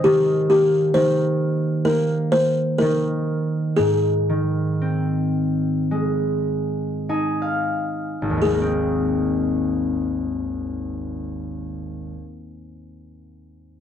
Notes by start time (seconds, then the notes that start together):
Already playing: C4 D#4 D#5 G#5
0.04 D#3 G4
0.50 A#3 G4
0.94 D#3 C5
1.85 A#3 A#4
2.32 C5
2.78 D#3 A#4
3.77 G#2 G#4
4.29 D#3
4.82 C4
5.91 G#3
7.09 D#4 G#5
7.42 F5
8.22 G#1
8.30 D#2
8.37 D#3
8.42 G#4
8.46 G#3
8.54 A#3
8.62 C4